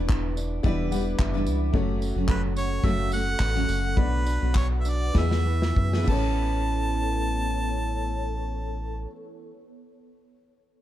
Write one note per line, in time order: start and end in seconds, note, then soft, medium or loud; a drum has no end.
0.00 0.58 B3 medium
0.00 0.35 D4 medium
0.00 0.63 D4 medium
0.00 0.59 E4 medium
0.00 0.64 E4 medium
0.00 0.59 G4 medium
0.00 1.71 G4 medium
0.00 0.63 B4 medium
0.00 0.59 D5 loud
0.00 1.71 E5 medium
0.00 1.72 D6 medium
0.08 0.60 E1 medium
0.08 0.90 B3 medium
0.08 kick loud
0.08 clap loud
0.36 1.18 D4 medium
0.36 tambourine medium
0.63 1.15 E1 loud
0.63 0.91 E3 loud
0.63 0.89 G3 medium
0.63 1.68 B3 medium
0.63 0.90 D4 loud
0.63 1.68 E4 medium
0.63 0.91 E4 loud
0.63 1.79 G4 medium
0.63 1.69 G4 medium
0.63 0.92 B4 loud
0.63 1.69 D5 loud
0.63 kick loud
0.91 1.33 G3 medium
0.91 1.45 B3 medium
0.91 1.34 D4 medium
0.91 1.33 E4 medium
0.91 1.32 B4 medium
0.91 1.17 F#5 medium
0.91 tambourine medium
1.19 1.48 F#1 loud
1.19 1.80 D4 medium
1.19 1.70 E5 medium
1.19 kick loud
1.19 clap loud
1.34 1.74 E3 medium
1.34 1.73 G3 medium
1.34 1.74 D4 medium
1.34 1.74 E4 medium
1.34 1.73 B4 medium
1.46 1.71 C#2 medium
1.46 1.79 B3 medium
1.46 tambourine medium
1.73 2.13 F#1 loud
1.73 3.96 F#3 medium
1.73 2.16 F#3 medium
1.73 2.78 A3 loud
1.73 2.16 A3 medium
1.73 2.79 C#4 medium
1.73 2.15 C#4 medium
1.73 2.79 F#4 medium
1.73 2.14 F#4 medium
1.73 3.95 A4 medium
1.73 2.79 C#5 loud
1.73 3.95 F#5 medium
1.73 3.95 C#6 medium
1.73 kick loud
2.01 2.55 C#4 medium
2.01 tambourine medium
2.15 2.27 F#1 loud
2.15 2.84 F#3 medium
2.15 2.83 A3 medium
2.15 2.84 C#4 medium
2.15 2.85 F#4 medium
2.28 2.80 F#1 loud
2.28 3.11 A3 medium
2.28 2.42 B4 medium
2.28 kick loud
2.28 clap loud
2.56 3.40 C#4 medium
2.56 2.87 C#5 loud
2.56 tambourine medium
2.83 3.36 F#1 loud
2.83 3.11 F#2 medium
2.83 3.12 C#3 medium
2.83 3.10 F#3 loud
2.83 3.91 A3 medium
2.83 3.11 A3 medium
2.83 3.92 C#4 medium
2.83 3.12 C#4 medium
2.83 3.92 F#4 medium
2.83 3.12 F#4 medium
2.83 4.03 A4 medium
2.83 3.92 C#5 medium
2.83 3.12 E5 loud
2.83 kick loud
3.11 3.55 F#3 medium
3.11 3.67 A3 medium
3.11 3.55 A3 medium
3.11 3.54 C#4 medium
3.11 3.54 F#4 medium
3.11 4.01 F#5 loud
3.11 tambourine medium
3.40 3.66 A1 loud
3.40 3.56 B3 medium
3.40 kick loud
3.40 clap loud
3.55 3.98 F#2 medium
3.55 3.98 C#3 medium
3.55 3.95 F#3 medium
3.55 3.97 A3 medium
3.55 3.97 C#4 medium
3.55 4.04 C#4 medium
3.55 3.97 F#4 medium
3.69 3.95 F#1 medium
3.69 4.04 A3 medium
3.69 tambourine medium
3.96 4.39 B1 loud
3.96 4.42 F#3 medium
3.96 5.14 F#3 medium
3.96 5.09 B3 medium
3.96 4.42 B3 medium
3.96 5.09 D4 medium
3.96 4.41 D4 medium
3.96 5.10 F#4 medium
3.96 4.40 F#4 medium
3.96 6.06 B4 medium
3.96 4.56 B4 loud
3.96 5.10 D5 medium
3.96 5.14 F#5 medium
3.96 5.14 D6 medium
3.96 kick loud
4.26 4.84 D4 medium
4.26 tambourine medium
4.41 4.54 B1 loud
4.41 5.14 B3 soft
4.41 5.15 D4 medium
4.41 5.14 F#4 medium
4.55 5.11 B1 medium
4.55 5.45 B3 medium
4.55 4.67 C#5 medium
4.55 kick loud
4.55 clap loud
4.80 4.90 E5 medium
4.85 5.22 D4 medium
4.85 5.17 D5 loud
4.85 tambourine medium
5.14 5.73 E2 loud
5.14 5.43 E3 medium
5.14 6.01 E3 medium
5.14 6.03 B3 medium
5.14 5.44 B3 medium
5.14 6.08 E4 medium
5.14 5.45 E4 loud
5.14 6.08 G#4 medium
5.14 5.46 G#4 medium
5.14 5.23 D#5 medium
5.14 6.07 G#5 medium
5.14 6.07 E6 medium
5.14 kick loud
5.14 snare medium
5.18 6.06 E5 medium
5.22 6.12 E5 medium
5.31 snare medium
5.44 5.93 E3 medium
5.44 6.09 B3 medium
5.44 5.93 B3 medium
5.44 5.93 E4 medium
5.44 5.92 G#4 medium
5.62 snare medium
5.76 6.06 F#2 medium
5.76 6.16 E4 medium
5.76 kick loud
5.93 6.03 E3 medium
5.93 6.08 B3 medium
5.93 6.08 E4 medium
5.93 6.08 G#4 medium
5.93 snare medium
6.02 9.52 E3 medium
6.02 9.54 A3 medium
6.02 9.03 B3 medium
6.07 9.07 A1 loud
6.07 9.07 B3 medium
6.07 9.59 B3 medium
6.07 9.59 C#4 medium
6.07 9.06 A4 medium
6.07 9.08 A4 medium
6.07 9.07 C#5 medium
6.07 9.08 A5 loud
6.07 kick loud
6.07 crash medium
6.12 9.63 E4 loud
6.12 9.11 C#5 medium
6.16 9.66 C#4 medium
6.16 9.66 B4 loud
6.22 9.72 A4 medium